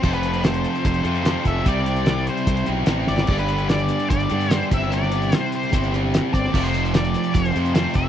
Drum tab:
CC |x---------------|----------------|x---------------|----------------|
HH |-xxxxxxxxxxxx-x-|x-xxx-xxxxx-x---|-xxxxxxxxxxxx-x-|x-xxx-xxxxx-x-x-|
SD |----o-------o---|----o-------o-oo|-o--o-o-----o--o|-o--o-------o--o|
BD |o-------o-----o-|o-------o-------|o-------o-----o-|--------o-----o-|

CC |x---------------|
HH |-xxxxxxxxxxxx-x-|
SD |----o-o-----o---|
BD |o-------o-----o-|